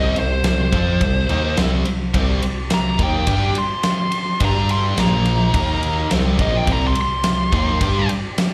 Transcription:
0.00 0.14 C2 medium
0.00 0.15 C3 medium
0.00 0.15 G3 medium
0.00 0.16 C4 loud
0.00 0.17 D#5 medium
0.16 0.43 C2 medium
0.16 0.39 C3 medium
0.16 0.39 G3 medium
0.16 0.45 C5 medium
0.16 ride medium
0.44 0.71 C2 medium
0.44 0.67 C3 medium
0.44 0.68 G3 medium
0.44 snare loud
0.44 ride medium
0.48 1.57 C5 loud
0.72 0.99 F2 loud
0.72 1.00 F3 medium
0.72 1.00 C4 medium
0.72 1.01 F4 medium
0.72 kick loud
0.72 ride medium
1.01 1.28 C2 medium
1.01 1.24 C3 medium
1.01 1.24 G3 medium
1.01 kick loud
1.01 ride loud
1.29 1.56 D#2 medium
1.29 1.57 D#3 medium
1.29 1.57 A#3 medium
1.29 1.58 D#4 loud
1.29 ride medium
1.57 1.84 C2 medium
1.57 1.85 C3 medium
1.57 1.86 G3 medium
1.57 1.86 C4 loud
1.57 snare loud
1.57 ride medium
1.85 2.13 C2 soft
1.85 muted overdriven electric guitar stroke medium
1.85 muted distorted electric guitar stroke medium
1.85 ride medium
2.14 2.41 C2 loud
2.14 2.41 C3 medium
2.14 2.42 G3 loud
2.14 4.39 C4 medium
2.14 2.42 C4 loud
2.14 4.39 G4 medium
2.14 4.39 D5 medium
2.14 kick loud
2.14 ride loud
2.42 2.70 C2 soft
2.42 muted distorted electric guitar stroke medium
2.42 muted overdriven electric guitar stroke medium
2.42 ride medium
2.70 2.98 C2 soft
2.70 3.00 A#5 loud
2.70 muted distorted electric guitar stroke medium
2.70 muted overdriven electric guitar stroke medium
2.70 snare loud
2.70 ride loud
2.98 3.26 D#2 loud
2.98 3.27 D#3 medium
2.98 3.26 A#3 loud
2.98 3.27 D#4 medium
2.98 kick loud
2.98 ride medium
3.03 3.56 G5 medium
3.27 3.54 G2 medium
3.27 3.55 G3 medium
3.27 3.55 D4 loud
3.27 3.55 G4 loud
3.27 kick loud
3.27 ride loud
3.55 4.40 C6 loud
3.55 ride medium
3.83 snare loud
3.83 ride medium
4.12 ride medium
4.40 4.94 G2 loud
4.40 4.97 G3 loud
4.40 4.97 G3 medium
4.40 4.97 D4 medium
4.40 4.98 D4 medium
4.40 4.97 G4 loud
4.40 4.98 A4 medium
4.40 kick loud
4.40 ride loud
4.45 4.71 A#5 medium
4.69 4.98 C6 medium
4.69 ride medium
4.97 5.51 A#1 loud
4.97 5.53 A#2 medium
4.97 5.54 F3 medium
4.97 5.54 A#3 medium
4.97 5.53 A#3 loud
4.97 5.54 F4 medium
4.97 5.54 C5 medium
4.97 6.09 A#5 medium
4.97 snare loud
4.97 ride medium
5.25 ride medium
5.53 6.07 D#2 loud
5.53 6.10 D#3 loud
5.53 6.10 A#3 loud
5.53 6.10 D#4 medium
5.53 6.11 D#4 loud
5.53 6.11 A#4 medium
5.53 6.10 F5 medium
5.53 kick loud
5.53 ride loud
5.83 ride medium
6.11 6.38 C2 medium
6.11 6.38 C3 medium
6.11 6.39 G3 loud
6.11 8.54 C4 medium
6.11 6.39 C4 medium
6.11 8.54 G4 medium
6.11 8.54 D5 medium
6.11 snare loud
6.11 ride medium
6.39 6.66 A#1 loud
6.39 6.66 A#2 medium
6.39 6.67 F3 medium
6.39 6.67 A#3 loud
6.39 6.54 D#5 loud
6.39 kick loud
6.39 ride medium
6.57 6.72 G5 medium
6.66 6.94 C2 loud
6.66 6.95 C3 loud
6.66 6.95 G3 loud
6.66 6.95 C4 loud
6.66 kick loud
6.66 ride loud
6.72 6.84 A#5 medium
6.87 6.99 C6 loud
6.95 7.24 C2 soft
6.95 muted distorted electric guitar stroke medium
6.95 muted overdriven electric guitar stroke medium
6.95 ride medium
7.01 8.09 C6 loud
7.24 7.51 C2 soft
7.24 muted distorted electric guitar stroke medium
7.24 muted overdriven electric guitar stroke medium
7.24 snare loud
7.24 ride medium
7.52 7.79 D#2 loud
7.52 7.80 D#3 medium
7.52 7.80 A#3 loud
7.52 7.81 D#4 loud
7.52 kick loud
7.52 ride medium
7.80 8.08 G2 medium
7.80 8.08 G3 medium
7.80 8.09 D4 medium
7.80 8.09 G4 loud
7.80 kick loud
7.80 ride loud
8.09 ride medium
8.38 snare loud
8.38 ride loud

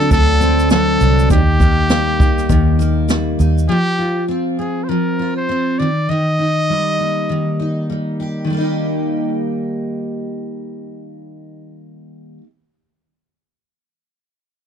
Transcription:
0.00 0.10 D3 medium
0.00 0.69 F#3 medium
0.00 0.39 C4 medium
0.00 0.99 D4 medium
0.00 0.12 A4 loud
0.11 0.96 D2 medium
0.11 1.30 D3 medium
0.11 0.67 A4 loud
0.11 kick medium
0.11 shaker medium
0.40 1.37 C4 medium
0.40 shaker medium
0.59 shaker medium
0.70 1.37 F#3 medium
0.70 1.27 A4 loud
0.70 snare loud
0.70 shaker medium
1.00 1.28 C2 medium
1.00 1.37 D4 medium
1.00 shaker medium
1.19 shaker medium
1.30 2.46 D#2 medium
1.30 2.48 D#3 medium
1.30 3.06 G4 loud
1.30 kick medium
1.30 shaker medium
1.60 2.78 A#3 medium
1.60 kick medium
1.60 shaker soft
1.90 3.07 G3 medium
1.90 snare loud
1.90 shaker medium
2.20 3.38 D#4 medium
2.20 kick loud
2.20 shaker soft
2.38 snare soft
2.38 shaker soft
2.49 3.35 D#2 loud
2.49 3.76 D#3 medium
2.49 kick medium
2.49 shaker medium
2.79 3.76 A#3 medium
2.79 shaker medium
3.09 3.68 G3 medium
3.09 snare loud
3.09 shaker medium
3.39 3.67 D#2 medium
3.39 3.76 D#4 medium
3.39 shaker medium
3.58 shaker medium
3.69 4.88 F3 medium
3.69 4.25 G4 loud
3.99 5.18 F4 soft
4.28 4.58 C4 medium
4.59 5.48 C4 soft
4.59 4.86 G#4 medium
4.84 4.91 C5 medium
4.89 5.86 F3 medium
4.89 5.36 A#4 medium
5.19 5.86 F4 medium
5.37 5.80 C5 medium
5.49 5.86 C4 medium
5.79 6.09 D#3 medium
5.79 6.11 D5 medium
6.09 7.29 D#3 medium
6.09 7.90 D#5 loud
6.39 7.59 D#4 soft
6.70 7.89 G3 medium
6.99 8.54 A#3 soft
7.29 8.44 D#3 medium
7.59 8.58 D#4 soft
7.90 8.50 G3 medium
8.20 8.62 G4 medium
8.44 12.38 D#3 medium
8.50 12.41 G3 medium
8.54 12.43 A#3 medium
8.54 12.45 D#4 medium
8.62 12.47 G4 medium

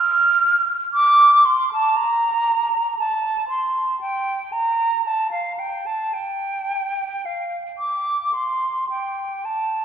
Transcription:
0.00 0.66 F6 medium
0.94 1.47 D6 medium
1.45 1.70 C6 medium
1.73 1.98 A5 medium
1.97 2.98 A#5 medium
2.99 3.48 A5 medium
3.49 3.99 C6 medium
4.01 4.54 G5 medium
4.52 5.05 A#5 medium
5.06 5.31 A5 medium
5.32 5.61 F5 medium
5.59 5.88 G5 soft
5.86 6.15 A5 medium
6.13 7.27 G5 medium
7.25 7.56 F5 soft
7.78 8.35 D6 medium
8.33 8.89 C6 soft
8.90 9.47 G5 soft
9.45 9.85 A5 medium

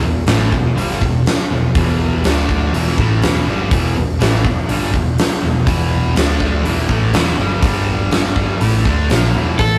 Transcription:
0.03 0.26 E1 medium
0.03 0.23 E2 medium
0.03 0.23 B2 medium
0.27 0.50 A1 loud
0.27 0.51 A2 medium
0.27 0.52 E3 medium
0.27 0.52 A3 medium
0.27 snare loud
0.27 open hi-hat soft
0.52 0.72 E2 medium
0.52 0.72 B2 medium
0.52 kick medium
0.76 0.99 G1 medium
0.76 1.00 G2 medium
0.76 1.01 D3 loud
0.76 1.01 G3 loud
0.76 open hi-hat medium
0.91 snare soft
1.02 1.24 E1 medium
1.02 1.21 E2 medium
1.02 1.21 B2 medium
1.02 kick medium
1.26 snare loud
1.26 open hi-hat soft
1.51 1.73 E1 medium
1.51 1.70 E2 medium
1.51 1.71 B2 medium
1.75 2.21 E1 medium
1.75 2.23 E2 medium
1.75 2.23 B2 medium
1.75 2.24 E3 loud
1.75 kick loud
1.75 open hi-hat medium
2.24 2.70 D2 loud
2.24 2.72 D3 medium
2.24 2.72 A3 loud
2.24 2.73 D4 loud
2.24 snare loud
2.24 open hi-hat medium
2.49 kick medium
2.73 2.96 E1 medium
2.73 2.97 E2 loud
2.73 2.97 B2 loud
2.73 2.97 E3 loud
2.73 open hi-hat medium
2.88 snare soft
2.98 3.20 A1 medium
2.98 3.21 A2 medium
2.98 3.22 E3 medium
2.98 3.22 A3 medium
2.98 kick medium
3.22 3.45 E1 medium
3.22 3.46 E2 medium
3.22 3.46 B2 loud
3.22 3.46 E3 loud
3.22 snare loud
3.22 open hi-hat medium
3.46 3.70 G1 medium
3.46 3.70 G2 medium
3.46 3.70 D3 medium
3.46 3.71 G3 loud
3.71 3.94 E1 loud
3.71 3.95 E2 medium
3.71 3.95 B2 medium
3.71 3.95 E3 medium
3.71 kick loud
3.71 open hi-hat medium
3.96 4.18 E1 medium
3.96 4.16 E2 medium
3.96 4.16 B2 medium
4.20 4.42 A1 loud
4.20 4.44 A2 loud
4.20 4.44 E3 loud
4.20 4.44 A3 loud
4.20 snare loud
4.20 open hi-hat medium
4.45 4.67 E1 medium
4.45 4.64 E2 medium
4.45 4.64 B2 medium
4.45 kick medium
4.69 4.92 G1 medium
4.69 4.93 G2 loud
4.69 4.93 D3 loud
4.69 4.93 G3 loud
4.69 open hi-hat medium
4.83 snare soft
4.94 5.16 E1 medium
4.94 5.13 E2 medium
4.94 5.13 B2 medium
4.94 kick medium
5.18 snare loud
5.18 open hi-hat medium
5.42 5.65 E1 medium
5.42 5.62 E2 medium
5.42 5.63 B2 medium
5.66 6.12 E1 medium
5.66 6.15 E2 loud
5.66 6.15 B2 loud
5.66 6.16 E3 loud
5.66 kick loud
5.66 open hi-hat medium
6.15 6.61 D2 loud
6.15 6.64 D3 medium
6.15 6.64 A3 loud
6.15 6.64 D4 loud
6.15 snare loud
6.15 open hi-hat medium
6.40 kick medium
6.63 6.87 E1 medium
6.63 6.88 E2 loud
6.63 6.88 B2 loud
6.63 6.87 E3 loud
6.63 open hi-hat medium
6.88 7.12 A1 medium
6.88 7.12 A2 medium
6.88 7.13 E3 medium
6.88 7.13 A3 loud
6.88 kick medium
7.13 7.36 E1 medium
7.13 7.37 E2 medium
7.13 7.37 B2 medium
7.13 7.38 E3 medium
7.13 snare loud
7.13 open hi-hat medium
7.37 7.61 G1 medium
7.37 7.60 G2 medium
7.37 7.61 D3 loud
7.37 7.62 G3 loud
7.62 8.57 G1 loud
7.62 8.60 G2 loud
7.62 8.60 D3 medium
7.62 8.60 G3 loud
7.62 kick loud
7.62 open hi-hat medium
8.11 snare loud
8.11 open hi-hat medium
8.36 kick medium
8.60 8.84 A1 medium
8.60 8.84 A2 medium
8.60 8.85 E3 loud
8.60 8.85 A3 loud
8.60 open hi-hat medium
8.85 9.08 D2 medium
8.85 9.10 D3 medium
8.85 9.10 A3 medium
8.85 9.10 D4 medium
8.85 kick medium
9.10 9.33 A#1 medium
9.10 9.34 A#2 medium
9.10 9.34 F3 loud
9.10 9.35 A#3 loud
9.10 snare loud
9.10 open hi-hat medium
9.34 9.58 E1 medium
9.34 9.59 E2 loud
9.34 9.59 B2 medium
9.34 9.59 E3 loud
9.59 9.78 A1 medium
9.59 9.78 A2 medium
9.59 9.78 E3 medium
9.59 9.78 A4 medium
9.59 kick loud
9.59 open hi-hat medium

